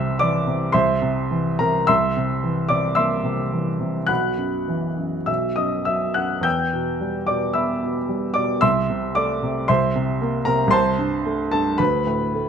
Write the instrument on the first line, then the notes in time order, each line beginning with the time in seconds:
upright piano
Already playing: C2 C3 E5 C6 E6
0.19 E3 D5 D6
0.47 C3
0.72 C2 C5 E5 C6
1.02 C3
1.31 E3
1.59 C3 A#4 A#5
1.87 C2 E5 C6 E6
2.16 C3
2.44 E3
2.69 C3 D5 D6
2.95 A#3 E5 C6 E6
3.24 C3
3.52 E3
3.80 C3
4.07 B1 F#5 B5 F#6
4.38 F#2
4.68 E3
4.97 F#2
5.26 B1 E5 E6
5.56 F#2 D#5 D#6
5.85 F#3 E5 E6
6.14 F#2 F#5 F#6
6.41 E2 G5 E6 G6
6.73 B2
7.01 G3
7.27 B2 D5 D6
7.53 B3 E5 B5 E6
7.82 B2
8.09 G3
8.34 B2 D5 D6
8.61 C2 E5 C6 E6
8.90 C3
9.15 A3 D5 D6
9.43 C3
9.68 C2 C5 E5 C6
9.95 C3
10.21 A#3
10.45 C3 A#4 A#5
10.67 C2 C6
10.72 C5 A5
10.98 G2
11.26 A3
11.51 G2 A4 A5
11.78 D2 B4 B5
12.07 A2
12.35 A3